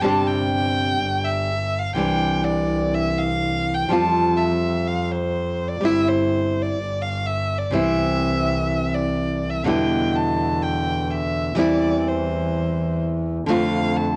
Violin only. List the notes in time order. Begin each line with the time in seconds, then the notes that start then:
0.01 A5
0.27 G5
1.24 E5
1.79 F5
1.96 G5
2.44 D5
2.94 E5
3.18 F5
3.74 G5
3.91 A5
4.37 E5
4.87 F5
5.11 C5
5.68 D5
5.85 E5
6.08 C5
6.62 D5
7.02 F5
7.26 E5
7.58 D5
7.73 E5
8.95 D5
9.50 E5
9.68 G5
10.16 A5
10.62 G5
11.10 E5
11.59 D5
12.08 C5
13.48 F5
13.96 A5